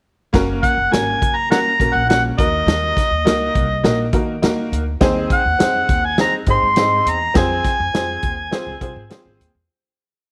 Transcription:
0.33 0.58 F#1 loud
0.33 0.72 A#3 loud
0.33 0.72 C#4 loud
0.33 0.72 F#4 loud
0.33 0.73 A#4 loud
0.33 kick loud
0.33 snare loud
0.33 closed hi-hat medium
0.63 0.94 F#5 medium
0.63 kick medium
0.63 closed hi-hat medium
0.78 0.90 F#1 medium
0.91 1.16 G#1 medium
0.91 1.30 A#3 medium
0.91 1.31 C#4 medium
0.91 1.31 F#4 medium
0.91 1.31 A#4 medium
0.91 1.38 G#5 loud
0.91 snare loud
0.91 closed hi-hat loud
1.22 1.57 F#1 medium
1.22 kick medium
1.22 closed hi-hat medium
1.36 1.51 A#5 loud
1.50 1.70 A#3 medium
1.50 1.70 C#4 medium
1.50 1.70 F#4 medium
1.50 1.71 A#4 medium
1.50 1.59 F#5 medium
1.50 1.96 A#5 loud
1.50 snare loud
1.50 closed hi-hat medium
1.79 1.92 A#1 medium
1.79 1.99 A#3 medium
1.79 1.99 C#4 medium
1.79 2.00 F#4 medium
1.79 2.00 A#4 medium
1.79 kick medium
1.79 closed hi-hat medium
1.95 2.30 A#1 loud
1.95 2.08 F#5 medium
2.09 2.36 A#3 medium
2.09 2.39 C#4 medium
2.09 2.37 F#4 medium
2.09 2.38 A#4 medium
2.09 2.22 F#5 medium
2.09 snare loud
2.09 closed hi-hat medium
2.37 2.62 D#2 medium
2.37 3.08 A#3 medium
2.37 3.09 D#4 medium
2.37 3.09 F#4 medium
2.37 3.09 A#4 medium
2.37 4.10 D#5 medium
2.37 kick loud
2.37 closed hi-hat medium
2.66 2.91 D#2 loud
2.66 snare loud
2.66 closed hi-hat medium
2.97 kick medium
2.97 snare soft
2.97 closed hi-hat medium
3.11 3.23 D#2 medium
3.25 3.49 C#2 medium
3.25 3.64 A#3 medium
3.25 3.64 D#4 medium
3.25 3.65 F#4 medium
3.25 3.65 A#4 medium
3.25 snare loud
3.25 closed hi-hat loud
3.55 3.79 C2 medium
3.55 kick medium
3.55 closed hi-hat medium
3.83 4.08 A#1 medium
3.83 4.03 A#3 medium
3.83 4.04 D#4 medium
3.83 4.04 F#4 medium
3.83 4.04 A#4 medium
3.83 snare loud
3.83 closed hi-hat medium
4.13 4.37 D#3 medium
4.13 4.33 A#3 medium
4.13 4.33 D#4 medium
4.13 4.33 F#4 medium
4.13 4.33 A#4 medium
4.13 kick medium
4.13 closed hi-hat medium
4.42 4.66 D#2 medium
4.42 4.81 A#3 medium
4.42 4.81 D#4 medium
4.42 4.82 F#4 medium
4.42 4.82 A#4 loud
4.42 snare loud
4.42 closed hi-hat medium
4.72 4.96 D2 medium
4.72 closed hi-hat medium
5.01 5.25 D#2 loud
5.01 5.40 C4 loud
5.01 5.40 D#4 loud
5.01 5.40 G#4 loud
5.01 5.41 C5 loud
5.01 kick loud
5.01 snare loud
5.01 closed hi-hat medium
5.30 6.07 F#5 medium
5.30 kick medium
5.30 closed hi-hat medium
5.45 5.57 D#2 medium
5.59 5.84 F2 medium
5.59 5.98 C4 medium
5.59 5.98 D#4 medium
5.59 5.98 G#4 medium
5.59 5.99 C5 medium
5.59 snare loud
5.59 closed hi-hat loud
5.89 6.25 D#2 medium
5.89 kick medium
5.89 closed hi-hat medium
6.05 6.19 G#5 medium
6.18 6.38 C4 medium
6.18 6.38 D#4 medium
6.18 6.38 G#4 medium
6.18 6.38 C5 medium
6.18 6.33 A#5 loud
6.18 snare loud
6.18 closed hi-hat medium
6.46 6.59 G#2 medium
6.46 6.67 C4 medium
6.46 6.67 D#4 medium
6.46 6.67 G#4 medium
6.46 6.68 C5 medium
6.46 kick medium
6.46 closed hi-hat medium
6.50 7.11 C6 loud
6.63 6.98 G#2 medium
6.76 7.15 C4 medium
6.76 7.16 D#4 medium
6.76 7.16 G#4 medium
6.76 7.16 D#5 medium
6.76 snare loud
6.76 closed hi-hat medium
7.06 7.30 E2 medium
7.06 7.37 A#5 loud
7.06 closed hi-hat medium
7.34 7.59 F2 loud
7.34 7.73 C4 loud
7.34 7.74 F4 medium
7.34 7.74 G#4 medium
7.34 7.75 C5 loud
7.34 9.08 G#5 loud
7.34 kick loud
7.34 snare loud
7.34 closed hi-hat medium
7.64 kick medium
7.64 snare soft
7.64 closed hi-hat medium
7.80 7.91 F2 loud
7.94 8.18 F2 medium
7.94 8.33 C4 medium
7.94 8.33 F4 medium
7.94 8.33 G#4 medium
7.94 8.34 C5 medium
7.94 snare loud
7.94 closed hi-hat loud
8.22 8.47 D#2 medium
8.22 kick medium
8.22 closed hi-hat medium
8.51 8.71 C4 medium
8.51 8.72 F4 medium
8.51 8.72 G#4 medium
8.51 8.72 C5 loud
8.51 snare loud
8.51 closed hi-hat medium
8.67 8.79 C#2 medium
8.81 8.93 C2 medium
8.81 9.01 C4 medium
8.81 9.01 F4 medium
8.81 9.01 G#4 medium
8.81 9.02 C5 medium
8.81 kick medium
8.81 closed hi-hat medium
8.96 9.08 G#2 medium
9.10 9.49 C4 medium
9.10 9.49 F4 medium
9.10 9.50 G#4 medium
9.10 9.50 C5 loud
9.10 snare loud
9.10 closed hi-hat loud
9.25 9.37 G#1 loud
9.40 9.52 D#2 medium
9.40 closed hi-hat medium

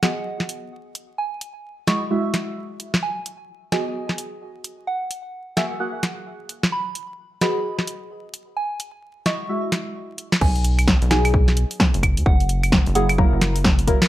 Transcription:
0.03 0.94 B3 medium
0.03 0.94 F#4 medium
0.03 0.94 G#4 medium
0.03 0.94 D#5 medium
0.03 0.33 F#5 medium
0.03 snare medium
0.03 closed hi-hat medium
0.40 snare soft
0.49 closed hi-hat medium
0.95 closed hi-hat medium
1.18 1.40 G#5 medium
1.41 closed hi-hat medium
1.87 1.96 G#3 medium
1.87 1.96 E4 medium
1.87 1.96 F#4 medium
1.87 1.96 D#5 medium
1.87 2.18 C#6 medium
1.87 snare medium
1.87 closed hi-hat medium
2.10 3.02 G#3 medium
2.10 3.02 E4 medium
2.10 3.02 F#4 medium
2.10 3.02 E5 medium
2.34 snare soft
2.34 closed hi-hat medium
2.80 closed hi-hat medium
2.94 snare medium
3.03 3.25 G#5 medium
3.26 closed hi-hat medium
3.72 4.86 B3 medium
3.72 4.86 F#4 medium
3.72 4.86 G#4 medium
3.72 4.86 D#5 medium
3.72 4.02 G#5 medium
3.72 snare medium
3.72 closed hi-hat medium
4.09 snare soft
4.18 closed hi-hat medium
4.64 closed hi-hat medium
4.87 5.09 F#5 medium
5.11 closed hi-hat medium
5.57 5.65 A#3 medium
5.57 5.65 F#4 medium
5.57 5.65 G#4 medium
5.57 5.65 E5 medium
5.57 5.87 F#5 medium
5.57 snare medium
5.57 closed hi-hat medium
5.80 6.71 A#3 medium
5.80 6.71 F#4 medium
5.80 6.71 G#4 medium
5.80 6.71 F#5 medium
6.03 snare soft
6.03 closed hi-hat medium
6.49 closed hi-hat medium
6.63 snare medium
6.72 6.94 B5 medium
6.95 closed hi-hat medium
7.41 8.33 B3 medium
7.41 8.33 F#4 medium
7.41 8.33 G#4 medium
7.41 8.33 D#5 medium
7.41 7.72 B5 medium
7.41 snare medium
7.41 closed hi-hat medium
7.79 snare soft
7.87 closed hi-hat loud
8.34 closed hi-hat medium
8.57 8.79 G#5 medium
8.80 closed hi-hat loud
9.26 9.35 G#3 medium
9.26 9.35 E4 medium
9.26 9.35 F#4 medium
9.26 9.35 D#5 medium
9.26 9.56 C#6 medium
9.26 snare medium
9.26 closed hi-hat medium
9.49 10.16 G#3 medium
9.49 10.17 E4 medium
9.49 10.17 F#4 medium
9.49 10.17 E5 medium
9.72 snare medium
9.72 closed hi-hat loud
10.18 closed hi-hat medium
10.32 snare medium
10.41 10.95 B1 loud
10.41 10.63 G#5 loud
10.41 kick loud
10.41 crash loud
10.56 closed hi-hat soft
10.64 closed hi-hat loud
10.79 closed hi-hat medium
10.79 claves medium
10.88 kick loud
10.88 snare loud
11.02 11.65 B1 medium
11.02 closed hi-hat soft
11.10 12.25 F#3 medium
11.10 12.25 B3 medium
11.10 12.25 D#4 medium
11.10 12.25 G#4 medium
11.10 11.41 G#5 medium
11.10 snare medium
11.10 closed hi-hat loud
11.25 closed hi-hat medium
11.25 claves medium
11.34 kick loud
11.48 snare soft
11.57 closed hi-hat loud
11.71 closed hi-hat medium
11.80 kick loud
11.80 snare loud
11.94 12.19 F#1 medium
11.94 closed hi-hat medium
12.03 kick medium
12.03 closed hi-hat medium
12.03 claves medium
12.17 12.24 D#2 medium
12.17 closed hi-hat medium
12.26 12.80 F#1 loud
12.26 12.48 F#5 loud
12.26 kick loud
12.40 closed hi-hat soft
12.49 closed hi-hat loud
12.63 closed hi-hat medium
12.63 claves medium
12.72 kick loud
12.72 snare loud
12.86 13.26 F#1 medium
12.86 closed hi-hat soft
12.95 13.04 F#3 medium
12.95 13.04 A#3 medium
12.95 13.04 E4 medium
12.95 13.04 G#4 loud
12.95 13.25 F#5 medium
12.95 closed hi-hat loud
13.09 closed hi-hat medium
13.09 claves medium
13.18 13.86 F#3 medium
13.18 13.86 A#3 medium
13.18 13.86 E4 medium
13.18 13.86 A#4 loud
13.18 kick loud
13.32 13.95 F#1 medium
13.41 snare medium
13.41 closed hi-hat loud
13.56 closed hi-hat medium
13.64 kick loud
13.64 snare loud
13.79 closed hi-hat medium
13.88 13.96 F#3 medium
13.88 13.96 A#3 medium
13.88 13.96 E4 medium
13.88 13.96 A#4 medium
13.88 kick medium
13.88 closed hi-hat medium
14.02 snare medium
14.02 closed hi-hat medium

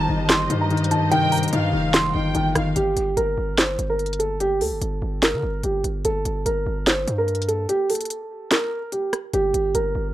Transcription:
0.00 0.09 D#3 medium
0.00 2.73 G3 medium
0.00 2.73 G4 medium
0.00 2.73 C5 medium
0.00 2.73 D#5 loud
0.00 0.27 A5 medium
0.00 0.27 A#5 medium
0.09 0.48 G1 loud
0.09 0.48 D#3 medium
0.29 0.59 C6 medium
0.29 snare loud
0.29 clap loud
0.29 closed hi-hat medium
0.50 1.49 G2 loud
0.50 0.69 D#3 medium
0.50 closed hi-hat medium
0.61 0.89 A#5 medium
0.70 0.90 D#3 medium
0.70 closed hi-hat soft
0.77 closed hi-hat medium
0.84 closed hi-hat medium
0.91 1.10 D#3 medium
0.91 1.08 A5 medium
0.91 closed hi-hat medium
1.11 1.41 G2 loud
1.11 1.41 C3 loud
1.11 1.41 D#3 loud
1.11 1.51 D#3 loud
1.11 1.29 G5 loud
1.11 1.50 G5 loud
1.11 closed hi-hat medium
1.32 1.90 A#5 medium
1.32 closed hi-hat medium
1.32 open hi-hat medium
1.38 closed hi-hat medium
1.43 closed hi-hat medium
1.48 closed hi-hat medium
1.53 1.72 G2 loud
1.53 1.71 D#3 medium
1.53 2.11 F5 medium
1.53 closed hi-hat medium
1.73 2.13 F1 loud
1.73 2.13 D#3 medium
1.94 2.32 C6 medium
1.94 snare loud
1.94 clap loud
1.94 closed hi-hat medium
2.14 2.34 G1 loud
2.14 2.33 D#3 medium
2.14 2.53 G5 medium
2.35 2.55 G1 loud
2.35 2.54 D#3 medium
2.35 2.52 G5 medium
2.35 closed hi-hat medium
2.55 2.75 G1 loud
2.55 2.76 D#3 medium
2.55 2.75 F5 medium
2.55 cross-stick medium
2.55 closed hi-hat medium
2.76 2.96 G1 loud
2.76 3.15 G4 loud
2.76 closed hi-hat medium
2.96 3.16 G1 loud
2.96 closed hi-hat medium
3.17 3.37 G1 loud
3.17 3.56 A#4 medium
3.17 closed hi-hat medium
3.38 3.77 G1 loud
3.58 3.88 C5 medium
3.58 snare loud
3.58 clap loud
3.58 closed hi-hat medium
3.79 4.62 G1 loud
3.79 closed hi-hat medium
3.90 4.18 A#4 medium
3.99 closed hi-hat soft
4.06 closed hi-hat medium
4.13 closed hi-hat medium
4.19 4.37 A4 medium
4.19 closed hi-hat medium
4.40 4.58 G4 loud
4.40 closed hi-hat medium
4.61 4.73 D2 loud
4.61 5.19 A4 medium
4.61 open hi-hat medium
4.72 4.81 G1 loud
4.81 5.01 G1 loud
4.81 closed hi-hat medium
5.02 5.35 G1 loud
5.23 5.61 A#4 medium
5.23 snare loud
5.23 clap medium
5.23 closed hi-hat medium
5.33 5.43 D3 loud
5.43 5.63 G1 loud
5.63 5.83 G1 loud
5.63 5.81 G4 medium
5.63 closed hi-hat medium
5.84 6.04 G1 loud
5.84 closed hi-hat medium
6.05 6.24 G1 loud
6.05 6.43 A4 loud
6.05 closed hi-hat medium
6.25 6.45 G1 loud
6.25 closed hi-hat medium
6.46 6.66 G1 loud
6.46 6.84 A#4 medium
6.46 closed hi-hat medium
6.66 7.06 G1 loud
6.87 7.17 C5 medium
6.87 snare loud
6.87 clap medium
6.87 closed hi-hat medium
7.07 7.67 G2 loud
7.07 closed hi-hat medium
7.18 7.47 A#4 medium
7.28 closed hi-hat soft
7.35 closed hi-hat medium
7.42 closed hi-hat medium
7.48 7.66 A4 medium
7.48 closed hi-hat medium
7.69 7.86 G4 loud
7.69 closed hi-hat medium
7.90 8.48 A4 medium
7.90 closed hi-hat medium
7.90 open hi-hat medium
7.95 closed hi-hat medium
8.01 closed hi-hat medium
8.05 closed hi-hat medium
8.10 closed hi-hat medium
8.51 8.90 A#4 medium
8.51 snare loud
8.51 clap loud
8.51 closed hi-hat medium
8.92 9.10 G4 medium
8.92 closed hi-hat medium
9.13 cross-stick medium
9.13 closed hi-hat medium
9.33 9.53 G1 loud
9.33 9.72 G4 loud
9.33 closed hi-hat medium
9.54 9.74 G1 loud
9.54 closed hi-hat medium
9.75 9.94 G1 loud
9.75 10.13 A#4 medium
9.75 closed hi-hat medium
9.95 10.14 G1 loud

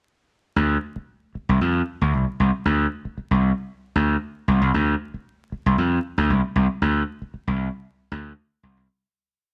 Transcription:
0.56 0.76 D2 medium
0.96 muted slap bass stroke soft
1.35 muted slap bass stroke soft
1.49 1.58 C2 medium
1.61 1.81 F2 medium
2.01 2.14 D2 medium
2.14 2.24 C2 medium
2.40 2.50 C2 medium
2.65 2.85 D2 medium
3.05 muted slap bass stroke soft
3.18 muted slap bass stroke soft
3.31 3.51 C2 medium
3.96 4.16 D2 medium
4.48 4.58 C2 medium
4.61 4.71 C2 medium
4.74 4.94 D2 loud
5.14 muted slap bass stroke soft
5.52 muted slap bass stroke soft
5.66 5.75 C2 medium
5.78 5.98 F2 loud
6.18 6.31 D2 medium
6.30 6.41 C2 medium
6.56 6.66 C2 medium
6.82 7.02 D2 medium
7.22 muted slap bass stroke soft
7.34 muted slap bass stroke soft
7.47 7.67 C2 medium
8.12 8.32 D2 medium
8.63 8.74 C2 medium
8.77 8.86 C2 medium

